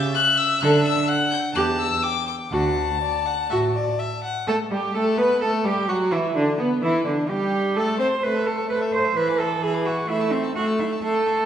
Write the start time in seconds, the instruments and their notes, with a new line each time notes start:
Already playing: violin E5
0.15 violin F#6
0.37 violin E6
0.61 cello D3, viola A4, violin F#6
0.84 violin E6
1.08 violin F#5 F#6
1.31 violin G6
1.54 cello E2, viola G4, violin A5 F#6
1.79 violin E6
2.03 violin G5 D6
2.27 violin D6
2.52 cello D2, viola F#4, violin F#5 A5
3.01 violin D5
3.26 violin F#5
3.50 cello A2, viola F#4, violin E5
3.75 violin D5
3.99 violin E5
4.24 violin F#5
4.47 viola A3, violin A4, cello A4
4.71 viola G3, violin G4, cello G4
4.94 viola A3, violin A4, cello A4
5.18 viola B3, violin B4, cello B4
5.41 viola A3, violin A4, cello A4
5.64 viola G3, violin G4, cello G4
5.88 viola F#3, violin F#4, cello F#4
6.11 viola E3, violin E4, cello E4
6.35 viola D3, violin D4, cello D4
6.59 violin B3, viola B3, cello B3
6.82 viola E3, violin E4, cello E4
7.05 viola D3, violin D4, cello D4
7.29 viola G3, violin G4, cello G4
7.75 viola A3, violin A4, cello A4
7.99 viola C4, violin C5, cello C5
8.23 viola A3, cello B4, violin C5 C6
8.34 violin E5 A5
8.46 cello A4, violin C5 C6
8.57 violin E5 A5
8.69 viola A3, cello B4, violin C5 C6
8.81 violin E5 A5
8.93 violin C5 C6, cello C5
9.05 violin E5 A5
9.16 viola E3, cello B4, violin E5 B5
9.28 violin G#5 D6
9.39 cello A4, violin E5 B5
9.50 violin G#5 D6
9.61 viola E3, cello G#4, violin E5 B5
9.74 violin G#5 D6
9.84 cello F#4, violin E5 B5
9.98 violin G#5 D6
10.08 viola A3, cello E4, violin E5 C6
10.20 violin A5 E6
10.31 cello C4, violin E5 C6
10.43 violin A5 E6
10.55 viola A3, cello F#4, violin E5 C6
10.66 violin A5 E6
10.78 cello E4, violin E5 C6
10.90 violin A5 E6
11.03 viola A3, cello A4, violin E5 C6
11.14 violin A5 E6
11.27 violin E5 C6
11.38 violin A5 E6